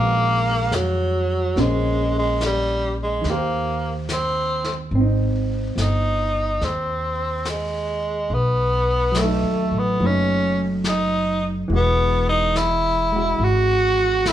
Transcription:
Already playing: A#1 D#3 G#3 A#3 C#4 F#4
0.72 F2 F#3, snare, hi-hat pedal
1.56 A#1 A#3 C#4 C5, brush sweep, snare
1.60 G#3
2.18 G#3
2.41 snare, hi-hat pedal
2.46 G3
3.03 G#3
3.21 D#2 D#3, brush sweep, snare
3.29 A#3 G4 C5
4.09 C4, snare, hi-hat pedal
4.64 snare
4.91 G#1, brush sweep
4.95 C4
5.00 D#4
5.76 G1, snare, hi-hat pedal
5.82 D#4
6.61 D#2 C4, brush sweep, snare
7.45 snare, hi-hat pedal
7.50 G#3
8.30 B1, brush sweep
8.34 B3
9.12 F#3, snare, hi-hat pedal
9.19 A3
9.24 D#4
9.43 D#2
9.72 A1
9.79 B3
10.00 F#1 F#3 A3 D#4, brush sweep
10.06 C#4
10.84 snare, hi-hat pedal
10.89 D#4
11.68 E1 E3 G#3, brush sweep
11.73 B3 F#4
12.29 D#4
12.56 E4, snare, hi-hat pedal
13.12 G#3 F#4
13.38 G#1, brush sweep
13.44 F#4
14.26 E4, snare, hi-hat pedal

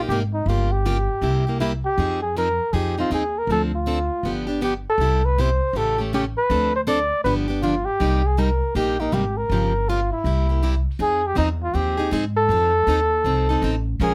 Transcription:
0.00 A#3
0.09 G#1 C3 G3 A#3 D#4 G4
0.34 D#4
0.46 G1 C#3 F3 A#3 F4 G4
0.50 F4
0.72 G4
0.86 C#3 F3 A#3 F4 G4
1.21 C2 C3 G3 A#3 E4 G4
1.47 A#3 E4 G4
1.60 C3 G3 A#3 E4 G4
1.85 G4
1.98 F2 F3 C4 D#4 G#4
2.22 G#4
2.37 F3 C4 D#4 G#4 A#4
2.73 F2 F3 C4 D#4 G4 G#4
2.98 C4 D#4 F4 G#4
3.10 D#2 F3 C4 D#4 G#4
3.39 A#4
3.47 D2 D3 F3 C4 D4 A4
3.52 A4
3.75 F4
3.86 D3 F3 C4 D4 A4
4.23 G1 D3 F3 B3 D4 G4
4.47 B3 D4 G4
4.61 D3 F3 B3 D4 G4
4.89 A4
4.98 C2 C3 G3 B3 E4 G4
5.25 B4
5.38 C3 G3 B3 E4 G4 C5
5.73 A1 C#3 E3 A3 C#4 G4 A4
5.98 A3 C#4 G4
6.13 C#3 E3 A3 C#4 G4
6.38 B4
6.50 D2 D3 F3 C4 D4 A4
6.76 C5
6.87 D3 F3 C4 D4 A4 D5
7.24 G1 D3 F3 B3 D4 G4 B4
7.48 B3 D4 G4
7.63 D3 F3 B3 D4 F4 G4
7.85 G4
8.00 C2 C3 G3 A#3 D#4 G4
8.26 G#4
8.37 C3 G3 A#3 D#4 G4 A#4
8.75 A#1 C3 G3 A#3 D#4 G4
9.00 A#3 D#4 G4
9.12 G#1 C3 G3 A#3 D#4 G4
9.38 A#4
9.49 G1 C#3 F3 A#3 F4 G4
9.89 C#3 F3 A#3 F4 G4
10.13 E4
10.24 C2 C3 G3 A#3 E4 G4
10.49 A#3 E4 G4
10.63 C3 G3 A#3 E4 G4
10.99 F2 F3 C4 D#4 G#4
11.27 G4
11.35 E2 F3 C4 D#4 G#4
11.64 F4
11.74 D#2 F3 C4 D#4 G4 G#4
11.97 C4 D#4 G#4
12.11 G#2 F3 C4 D#4 G#4
12.37 A4
12.49 F2 F3 C4 D#4 A4
12.87 D#2 F3 C4 D#4 A4
13.24 C2 F3 C4 D#4 A4
13.49 C4 D#4 A4
13.62 A1 F3 C4 D#4 A4
14.00 A#1 F3 G#3 C#4 F4 G#4 A#4

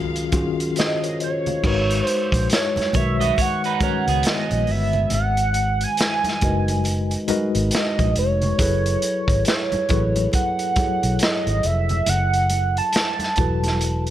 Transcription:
Already playing: C#2 C#3 D#3 F#3 G#3 C#4 F4 F#4 G#4 A#4 F5
0.16 closed hi-hat
0.32 D#3 C#4 F4 F#4 G#4, kick, closed hi-hat, high conga
0.60 closed hi-hat
0.76 G#4 C5 D#5, snare, closed hi-hat, muted conga
1.04 A#4 C#5, closed hi-hat
1.20 C5 C#5 D#5, closed hi-hat
1.46 C#5 F5, closed hi-hat, low conga
1.63 G#1 G#3 D#4 F#4 A#4 B4 C#5, kick, crash, low conga
1.91 closed hi-hat
2.05 C5, closed hi-hat, muted conga
2.32 A#1, kick, closed hi-hat
2.50 C#5, snare, closed hi-hat
2.76 muted fingered electric bass stroke, closed hi-hat, high conga
2.80 snare
2.93 B1 D#3 G#3 F#4 A#4 B4 C#5 E5, kick, closed hi-hat, muted conga, low conga
3.20 F#4 D#5, closed hi-hat, high conga
3.36 C#5, kick, closed hi-hat, muted conga
3.41 F#5
3.64 D#4 B4, closed hi-hat
3.80 D#3 G#3 C#4 F#4 A#4 B4 C#5, muted fingered electric bass stroke, kick, closed hi-hat, muted conga, high conga
4.08 C#2 B3 G#4, closed hi-hat
4.23 snare, closed hi-hat
4.29 D#5
4.51 A#1, closed hi-hat, high conga
4.67 G1, open hi-hat, muted conga
4.71 E5
4.93 closed hi-hat, low conga
5.10 G#1, closed hi-hat, muted conga, low conga
5.14 F#5
5.37 closed hi-hat
5.54 closed hi-hat
5.81 G#5, closed hi-hat
5.97 snare, closed hi-hat
6.24 snare, closed hi-hat, high conga
6.41 F#1 G#3 D#4 F#4 A#4 B4 D#5, kick, closed hi-hat, muted conga, low conga
6.68 closed hi-hat, high conga
6.84 closed hi-hat, muted conga
7.11 closed hi-hat
7.28 G#3 D#4 F#4 A#4 B4 D#5, muted fingered electric bass stroke, closed hi-hat, high conga
7.55 G#1, closed hi-hat
7.71 snare, closed hi-hat
7.76 D#5
7.99 A#1, kick, closed hi-hat, high conga
8.16 F1 C#5, closed hi-hat
8.42 closed hi-hat, low conga
8.58 F#1 F#3 E4 G#4 A4 B4, kick, closed hi-hat, muted conga, low conga
8.86 closed hi-hat
9.02 closed hi-hat, muted conga
9.28 G#1, kick, closed hi-hat
9.45 C#5, snare, closed hi-hat
9.72 muted fingered electric bass stroke, closed hi-hat, high conga
9.89 A1 F#3 E4 G#4 A4 B4, kick, closed hi-hat, muted conga, low conga
10.16 closed hi-hat, high conga
10.32 F#5, kick, closed hi-hat, muted conga
10.59 closed hi-hat
10.76 F#3 E4 G#4 A4 C#5, muted fingered electric bass stroke, kick, closed hi-hat, muted conga, high conga
11.03 B1, closed hi-hat
11.19 D#5, snare, closed hi-hat
11.47 G#1, closed hi-hat, high conga
11.63 F1 E5, closed hi-hat
11.89 closed hi-hat, low conga
12.06 F#1 F#5, closed hi-hat, muted conga, low conga
12.33 closed hi-hat
12.50 closed hi-hat, muted conga
12.77 A5, closed hi-hat
12.93 snare, closed hi-hat, muted conga
13.19 snare, closed hi-hat, high conga
13.36 E1 F#3 E4 F#4 A4, kick, closed hi-hat, muted conga, low conga
13.41 B4
13.63 snare, closed hi-hat, high conga
13.80 closed hi-hat, muted conga
14.07 closed hi-hat

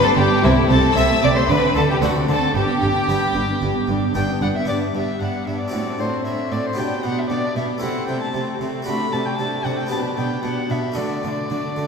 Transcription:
Already playing: G2 B3 G4
0.03 B3 A4 A5
0.17 G1 G2 D4 G4 G5
0.31 B3
0.43 C2 C3 C4 E4 E5
0.56 A3
0.69 C2 C3 C4 A4 A5
0.83 A3
0.95 C2 C3 A3 C4 E4 E5 E6
1.09 A3
1.21 C2 C3 C4 D5 D6
1.34 A3 C5 C6
1.48 D2 D3 D4 B4 B5
1.61 C4
1.74 D2 D3 D4 A4 A5
1.88 C4 G4 G5
2.01 D2 D3 A3 C4 D4 F#4 F#5
2.13 C4
2.27 D2 D3 D4 A4 A5
2.41 C4
2.53 G1 G2 D4 G4 G5
2.67 B3
2.80 G1 G2 D4
2.94 B3
3.07 G1 G2 B3 D4
3.22 B3
3.34 G1 G2 D4
3.49 B3
3.61 G1 G2 D4
3.75 B3
3.88 G1 G2 D4
4.02 B3
4.14 G1 G2 B3 D4 G5
4.29 B3
4.41 G1 G2 D4 F#5
4.55 B3 E5
4.65 G2 B3 D4 G4 D5
4.94 G2 B3 D4 G4 E5
5.20 G2 B3 D4 G4 F#5
5.46 G2 B3 D4 G4 E5
5.60 D5
5.68 C4 D4 F#4
5.72 A2 C4 D4 F#4
5.99 A2 C4 D4 F#4 C5
6.25 A2 C4 D4 F#4 E5
6.51 A2 C4 D4 F#4 D5
6.66 C5
6.73 B3 D4 G4
6.78 B2 B3 G4 G5
7.04 B2 B3 D4 G4 F#5
7.18 E5
7.29 B2 B3 D4 G4 D5
7.56 B2 B3 D4 G4 E5
7.78 A3 C4 E4 F#5
7.82 C3 A3 E4
8.07 C3 A3 C4 E4 G5
8.22 A5
8.34 C3 A3 C4 E4
8.59 C3 A3 C4 E4
8.83 A3 D4 F#4 B5
8.87 C3 A3 F#4
9.11 C3 A3 D4 F#4 A5
9.25 G5
9.38 C3 A3 D4 F#4 A5
9.64 C3 A3 D4 F#4 F#5
9.79 G5
9.87 B3 D4 G4
9.91 B2 B3 G4 A5
10.17 B2 B3 D4 G4 G5
10.43 B2 B3 D4 G4 F#5
10.69 B2 B3 D4 G4 E5
10.92 A3 D4 F#4
10.96 D3 A3 D4 F#4 D5
11.22 D3 A3 D4 F#4
11.49 D3 A3 D4 F#4
11.76 D3 A3 D4 F#4

